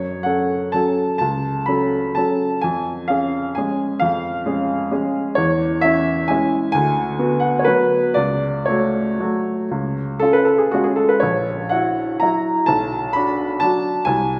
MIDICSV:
0, 0, Header, 1, 2, 480
1, 0, Start_track
1, 0, Key_signature, 3, "minor"
1, 0, Tempo, 473560
1, 1231, Time_signature, 3, 2, 24, 8
1, 3617, Tempo, 452148
1, 7457, Tempo, 489396
1, 8417, Tempo, 512821
1, 11297, Tempo, 490998
1, 12257, Tempo, 464037
1, 14504, End_track
2, 0, Start_track
2, 0, Title_t, "Upright piano"
2, 0, Program_c, 0, 0
2, 0, Control_c, 0, 64, 127
2, 0, Note_on_c, 0, 42, 40
2, 0, Note_on_c, 0, 73, 62
2, 235, Note_on_c, 0, 78, 61
2, 246, Note_off_c, 0, 42, 0
2, 248, Note_off_c, 0, 73, 0
2, 262, Note_on_c, 0, 61, 32
2, 264, Note_on_c, 0, 69, 37
2, 717, Note_off_c, 0, 61, 0
2, 718, Note_off_c, 0, 69, 0
2, 731, Note_on_c, 0, 81, 63
2, 744, Note_off_c, 0, 78, 0
2, 752, Note_on_c, 0, 54, 31
2, 757, Note_on_c, 0, 61, 32
2, 764, Note_on_c, 0, 69, 35
2, 768, Control_c, 0, 64, 0
2, 1184, Note_off_c, 0, 81, 0
2, 1187, Note_off_c, 0, 54, 0
2, 1190, Note_off_c, 0, 61, 0
2, 1193, Note_off_c, 0, 69, 0
2, 1199, Note_on_c, 0, 81, 66
2, 1226, Note_on_c, 0, 37, 43
2, 1428, Control_c, 0, 64, 127
2, 1681, Note_on_c, 0, 83, 70
2, 1690, Note_off_c, 0, 37, 0
2, 1691, Note_off_c, 0, 81, 0
2, 1703, Note_on_c, 0, 54, 37
2, 1708, Note_on_c, 0, 61, 36
2, 1712, Note_on_c, 0, 69, 38
2, 2160, Note_off_c, 0, 54, 0
2, 2162, Note_off_c, 0, 61, 0
2, 2164, Note_off_c, 0, 69, 0
2, 2177, Note_on_c, 0, 81, 63
2, 2189, Note_off_c, 0, 83, 0
2, 2201, Note_on_c, 0, 54, 35
2, 2203, Note_on_c, 0, 61, 34
2, 2209, Note_on_c, 0, 69, 36
2, 2214, Control_c, 0, 64, 0
2, 2635, Note_off_c, 0, 54, 0
2, 2636, Note_off_c, 0, 61, 0
2, 2639, Note_off_c, 0, 69, 0
2, 2650, Note_on_c, 0, 80, 72
2, 2664, Note_off_c, 0, 81, 0
2, 2674, Note_on_c, 0, 41, 48
2, 2843, Control_c, 0, 64, 127
2, 3119, Note_on_c, 0, 77, 68
2, 3126, Note_off_c, 0, 41, 0
2, 3128, Note_off_c, 0, 80, 0
2, 3139, Note_on_c, 0, 61, 36
2, 3145, Note_on_c, 0, 68, 42
2, 3576, Note_off_c, 0, 61, 0
2, 3579, Note_off_c, 0, 68, 0
2, 3597, Note_on_c, 0, 80, 70
2, 3607, Note_off_c, 0, 77, 0
2, 3625, Note_on_c, 0, 61, 38
2, 3626, Control_c, 0, 64, 0
2, 3626, Note_on_c, 0, 56, 37
2, 3631, Note_on_c, 0, 68, 40
2, 4055, Note_off_c, 0, 56, 0
2, 4055, Note_off_c, 0, 61, 0
2, 4058, Note_off_c, 0, 68, 0
2, 4070, Note_on_c, 0, 77, 75
2, 4082, Note_off_c, 0, 80, 0
2, 4094, Note_on_c, 0, 41, 52
2, 4298, Control_c, 0, 64, 127
2, 4545, Note_off_c, 0, 41, 0
2, 4563, Note_on_c, 0, 56, 40
2, 4566, Note_on_c, 0, 61, 42
2, 4572, Note_on_c, 0, 68, 46
2, 5005, Note_off_c, 0, 56, 0
2, 5007, Note_off_c, 0, 61, 0
2, 5010, Note_off_c, 0, 68, 0
2, 5046, Note_on_c, 0, 56, 39
2, 5048, Note_on_c, 0, 61, 38
2, 5053, Note_on_c, 0, 68, 42
2, 5054, Control_c, 0, 64, 0
2, 5493, Note_off_c, 0, 56, 0
2, 5494, Note_off_c, 0, 61, 0
2, 5497, Note_off_c, 0, 68, 0
2, 5511, Note_on_c, 0, 73, 78
2, 5524, Note_off_c, 0, 77, 0
2, 5537, Note_on_c, 0, 40, 54
2, 5753, Control_c, 0, 64, 127
2, 6001, Note_on_c, 0, 76, 82
2, 6004, Note_off_c, 0, 40, 0
2, 6005, Note_off_c, 0, 73, 0
2, 6029, Note_on_c, 0, 61, 45
2, 6029, Note_on_c, 0, 64, 49
2, 6477, Note_off_c, 0, 61, 0
2, 6477, Note_off_c, 0, 64, 0
2, 6493, Note_on_c, 0, 80, 78
2, 6505, Note_off_c, 0, 76, 0
2, 6518, Note_on_c, 0, 56, 42
2, 6520, Note_on_c, 0, 61, 43
2, 6529, Control_c, 0, 64, 0
2, 6529, Note_on_c, 0, 64, 45
2, 6948, Note_off_c, 0, 80, 0
2, 6949, Note_off_c, 0, 56, 0
2, 6949, Note_off_c, 0, 61, 0
2, 6954, Note_off_c, 0, 64, 0
2, 6964, Note_on_c, 0, 80, 94
2, 6991, Note_on_c, 0, 38, 58
2, 7185, Control_c, 0, 64, 127
2, 7446, Note_off_c, 0, 38, 0
2, 7463, Note_on_c, 0, 59, 47
2, 7467, Note_on_c, 0, 66, 46
2, 7665, Note_on_c, 0, 78, 66
2, 7680, Note_off_c, 0, 80, 0
2, 7848, Note_off_c, 0, 78, 0
2, 7857, Note_on_c, 0, 73, 59
2, 7894, Note_off_c, 0, 59, 0
2, 7896, Note_off_c, 0, 66, 0
2, 7908, Note_on_c, 0, 71, 76
2, 7929, Note_off_c, 0, 73, 0
2, 7931, Note_on_c, 0, 54, 40
2, 7934, Note_on_c, 0, 59, 42
2, 7940, Note_on_c, 0, 66, 41
2, 7941, Control_c, 0, 64, 0
2, 8379, Note_off_c, 0, 54, 0
2, 8381, Note_off_c, 0, 59, 0
2, 8384, Note_off_c, 0, 66, 0
2, 8395, Note_on_c, 0, 74, 81
2, 8407, Note_off_c, 0, 71, 0
2, 8416, Note_on_c, 0, 37, 52
2, 8634, Control_c, 0, 64, 127
2, 8877, Note_on_c, 0, 73, 66
2, 8884, Note_off_c, 0, 37, 0
2, 8889, Note_off_c, 0, 74, 0
2, 8901, Note_on_c, 0, 57, 42
2, 8903, Note_on_c, 0, 66, 45
2, 9351, Note_off_c, 0, 57, 0
2, 9352, Note_off_c, 0, 66, 0
2, 9386, Note_on_c, 0, 54, 37
2, 9387, Note_on_c, 0, 57, 37
2, 9390, Note_on_c, 0, 66, 43
2, 9397, Control_c, 0, 64, 0
2, 9832, Note_off_c, 0, 54, 0
2, 9832, Note_off_c, 0, 57, 0
2, 9833, Note_off_c, 0, 66, 0
2, 9865, Note_on_c, 0, 37, 49
2, 10088, Control_c, 0, 64, 127
2, 10318, Note_on_c, 0, 69, 76
2, 10324, Note_off_c, 0, 37, 0
2, 10329, Note_off_c, 0, 73, 0
2, 10341, Note_on_c, 0, 61, 42
2, 10345, Note_on_c, 0, 65, 43
2, 10351, Control_c, 0, 64, 0
2, 10444, Note_on_c, 0, 71, 65
2, 10449, Note_off_c, 0, 69, 0
2, 10554, Note_on_c, 0, 69, 65
2, 10574, Note_off_c, 0, 71, 0
2, 10680, Note_on_c, 0, 68, 63
2, 10690, Note_off_c, 0, 69, 0
2, 10790, Note_off_c, 0, 61, 0
2, 10792, Note_off_c, 0, 65, 0
2, 10804, Note_on_c, 0, 66, 67
2, 10815, Note_off_c, 0, 68, 0
2, 10824, Note_on_c, 0, 56, 37
2, 10831, Note_on_c, 0, 61, 35
2, 10835, Note_on_c, 0, 65, 39
2, 10918, Note_on_c, 0, 68, 64
2, 10937, Note_off_c, 0, 66, 0
2, 11033, Note_on_c, 0, 69, 65
2, 11054, Note_off_c, 0, 68, 0
2, 11152, Note_on_c, 0, 71, 60
2, 11168, Note_off_c, 0, 69, 0
2, 11257, Note_on_c, 0, 73, 72
2, 11259, Note_off_c, 0, 56, 0
2, 11262, Note_off_c, 0, 61, 0
2, 11264, Note_off_c, 0, 65, 0
2, 11281, Note_off_c, 0, 71, 0
2, 11283, Note_on_c, 0, 34, 49
2, 11485, Control_c, 0, 64, 127
2, 11740, Note_on_c, 0, 78, 73
2, 11744, Note_off_c, 0, 34, 0
2, 11745, Note_off_c, 0, 73, 0
2, 11761, Note_on_c, 0, 64, 42
2, 11764, Note_on_c, 0, 66, 46
2, 12216, Note_off_c, 0, 64, 0
2, 12217, Note_off_c, 0, 66, 0
2, 12231, Note_on_c, 0, 82, 72
2, 12245, Note_off_c, 0, 78, 0
2, 12254, Note_on_c, 0, 54, 41
2, 12260, Note_on_c, 0, 64, 39
2, 12265, Note_on_c, 0, 66, 40
2, 12273, Control_c, 0, 64, 0
2, 12701, Note_off_c, 0, 54, 0
2, 12705, Note_off_c, 0, 64, 0
2, 12707, Note_off_c, 0, 66, 0
2, 12711, Note_on_c, 0, 81, 78
2, 12731, Note_off_c, 0, 82, 0
2, 12732, Note_on_c, 0, 35, 51
2, 12922, Control_c, 0, 64, 127
2, 13196, Note_on_c, 0, 83, 78
2, 13210, Note_off_c, 0, 35, 0
2, 13214, Note_off_c, 0, 81, 0
2, 13223, Note_on_c, 0, 62, 45
2, 13226, Note_on_c, 0, 66, 45
2, 13671, Note_off_c, 0, 62, 0
2, 13672, Note_off_c, 0, 66, 0
2, 13679, Note_on_c, 0, 81, 83
2, 13698, Note_off_c, 0, 83, 0
2, 13706, Note_on_c, 0, 54, 42
2, 13711, Note_on_c, 0, 62, 41
2, 13716, Note_on_c, 0, 66, 42
2, 13725, Control_c, 0, 64, 0
2, 14139, Note_off_c, 0, 54, 0
2, 14141, Note_off_c, 0, 62, 0
2, 14143, Note_off_c, 0, 66, 0
2, 14146, Note_on_c, 0, 80, 89
2, 14166, Note_off_c, 0, 81, 0
2, 14167, Note_on_c, 0, 36, 55
2, 14405, Control_c, 0, 64, 127
2, 14504, Note_off_c, 0, 36, 0
2, 14504, Note_off_c, 0, 80, 0
2, 14504, End_track
0, 0, End_of_file